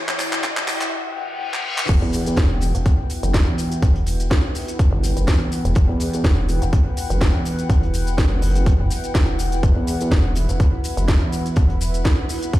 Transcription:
Already playing: E3 E4 G4 F#5 G5, riser
0.08 clap, closed hi-hat
0.19 clap, closed hi-hat, open hi-hat, shaker
0.33 clap, closed hi-hat, shaker
0.43 kick, snare, clap, closed hi-hat, shaker
0.57 clap
0.68 clap, open hi-hat, shaker
0.81 clap, closed hi-hat, shaker
0.92 reverse cymbal
1.54 clap
1.78 clap
1.89 E1 E4 B4 F#5 G5, kick, closed hi-hat, crash, impact, shaker
2.02 E2
2.12 closed hi-hat, open hi-hat, shaker
2.26 closed hi-hat, shaker
2.36 E1, kick, snare, closed hi-hat, shaker
2.61 closed hi-hat, open hi-hat, shaker
2.75 E1, closed hi-hat, shaker
2.86 kick, closed hi-hat, shaker
3.10 closed hi-hat, open hi-hat, shaker
3.23 F#1, closed hi-hat, shaker
3.34 E1, kick, snare, closed hi-hat, shaker
3.47 E2
3.58 closed hi-hat, open hi-hat, shaker
3.72 closed hi-hat, shaker
3.82 E1, kick, closed hi-hat, shaker
3.96 closed hi-hat
4.06 closed hi-hat, open hi-hat, shaker
4.20 closed hi-hat, shaker
4.31 kick, snare, closed hi-hat, shaker
4.55 open hi-hat, shaker
4.68 closed hi-hat, shaker
4.79 E1, kick, closed hi-hat, shaker
4.93 G1
5.03 snare, closed hi-hat, open hi-hat, shaker
5.17 F#1, closed hi-hat, shaker
5.27 E2, kick, snare, closed hi-hat, shaker
5.52 closed hi-hat, open hi-hat, shaker
5.65 E1, closed hi-hat, shaker
5.75 E1, kick, closed hi-hat, shaker
5.89 E2
6.00 closed hi-hat, open hi-hat, shaker
6.14 closed hi-hat, shaker
6.24 E1, kick, snare, closed hi-hat, shaker
6.49 closed hi-hat, open hi-hat, shaker
6.62 E1, closed hi-hat, shaker
6.73 kick, closed hi-hat, shaker
6.97 closed hi-hat, open hi-hat, shaker
7.10 F#1, closed hi-hat, shaker
7.21 E1, kick, snare, closed hi-hat, shaker
7.34 E2
7.45 closed hi-hat, open hi-hat, shaker
7.59 closed hi-hat, shaker
7.70 E1, kick, closed hi-hat, shaker
7.83 closed hi-hat
7.94 closed hi-hat, open hi-hat, shaker
8.07 closed hi-hat, shaker
8.18 F#1, kick, snare, closed hi-hat, shaker
8.42 F#1, open hi-hat, shaker
8.55 closed hi-hat, shaker
8.66 kick, closed hi-hat, shaker
8.80 F#1
8.91 snare, closed hi-hat, open hi-hat, shaker
9.04 closed hi-hat, shaker
9.14 E1, kick, snare, closed hi-hat, shaker
9.39 closed hi-hat, open hi-hat, shaker
9.52 closed hi-hat, shaker
9.63 E1 B5, kick, closed hi-hat, shaker
9.76 E2
9.87 closed hi-hat, open hi-hat, shaker
10.01 closed hi-hat, shaker
10.12 E1, kick, snare, closed hi-hat, shaker
10.35 closed hi-hat, open hi-hat, shaker
10.49 E1, closed hi-hat, shaker
10.60 kick, closed hi-hat, shaker
10.84 closed hi-hat, open hi-hat, shaker
10.97 F#1, closed hi-hat, shaker
11.08 E1, kick, snare, closed hi-hat, shaker
11.21 E2
11.32 closed hi-hat, open hi-hat, shaker
11.46 closed hi-hat, shaker
11.56 E1, kick, closed hi-hat, shaker
11.70 closed hi-hat
11.81 closed hi-hat, open hi-hat, shaker
11.94 closed hi-hat, shaker
12.05 kick, snare, closed hi-hat, shaker
12.29 open hi-hat, shaker
12.42 closed hi-hat, shaker
12.53 E1, kick, closed hi-hat, shaker

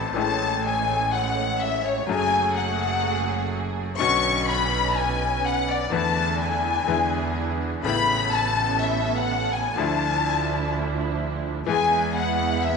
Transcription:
Already playing: A1 A2 E3 A3 C4 E4 A4 A5
0.14 A1 A2 E3 G#3 A3 C#4 A5
0.18 G#3
0.65 G#5
1.14 F#5
1.61 E5
1.86 C#5
2.07 F#1 F#2 F#3 A3 C#4 F#4 G#4 G#5
2.11 G#4
2.58 F#5
3.98 B1 B2 D3 B3 C#4 F#4 B4 C#6
4.48 B5
4.96 G#5
5.45 F#5
5.70 D5
5.90 E2 D3 E3 A3 B3 D4 E4 A4 A5
5.94 E4
6.41 G#5
6.85 E2 D3 E3 G#3 B3 D4 E4 G#4
6.90 E4
7.83 A1 A2 C#3 A3 B3 C#4 A4 B5
7.88 E4
8.34 A5
8.82 E5
9.17 F#5
9.54 G#5
9.76 D2 D3 F3 A3 D4 E4 A5
11.66 E2 E3 G#3 B3 E4 G#4 G#5
12.17 F#5
12.64 E5

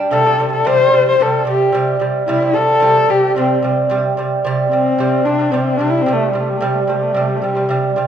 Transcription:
0.11 C3 G3 A4
0.24 C3 G3
0.38 C3 G3
0.53 A4
0.65 C3 G3 C5
0.92 C3 G3
1.09 C5
1.20 C3 G3 A4
1.45 C3 G3
1.50 G4
1.72 C3 G3
2.00 C3 G3
2.27 C3 G3 E4
2.41 C3 G3
2.54 C3 G3 A4
2.80 C3 G3
3.08 C3 G3 G4
3.36 C3 G3 C4
3.62 C3 G3
3.90 C3 G3
4.17 C3 G3
4.45 C3 G3
4.70 C3 G3 C4
4.98 C3 G3
5.25 C3 G3 D4
5.39 C3 G3
5.51 C3 G3 C4
5.77 C3 G3 D4
5.90 E4
6.01 C4
6.06 C3 G3
6.13 A3
6.31 C3 G3
6.35 G3
6.40 A3
6.49 G3
6.57 C3 A3
6.62 G3
6.74 A3
6.80 G3
6.87 C3 G3 A3
6.96 G3
7.02 A3
7.12 C3 G3
7.17 G3 A3
7.28 G3
7.36 A3
7.42 C3 G3
7.55 C3 G3
7.69 C3 G3
7.96 C3 G3

